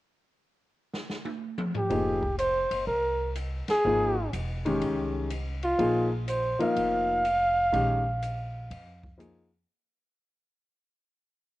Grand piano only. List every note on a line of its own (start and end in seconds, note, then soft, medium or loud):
1.90 2.19 F3 soft
1.90 2.20 A#3 soft
1.90 2.20 D#4 soft
1.90 2.20 G#4 medium
3.85 4.14 F3 medium
3.85 4.14 A#3 medium
3.85 4.14 D#4 medium
3.85 4.15 G#4 medium
4.65 5.27 D#3 medium
4.65 5.27 G#3 medium
4.65 5.28 C#4 medium
4.65 5.28 G4 medium
5.78 6.08 F3 medium
5.78 6.08 A#3 medium
5.78 6.08 D#4 medium
5.78 6.09 G#4 medium
6.59 7.21 F3 medium
6.59 7.21 A#3 medium
6.59 7.22 D#4 medium
6.59 7.22 A#4 medium
7.72 8.02 D#3 medium
7.72 8.02 G#3 soft
7.72 8.03 C#4 soft
7.72 8.03 G4 medium
9.18 9.48 F3 medium
9.18 9.48 A#3 medium
9.18 9.48 D#4 soft
9.18 9.48 G#4 medium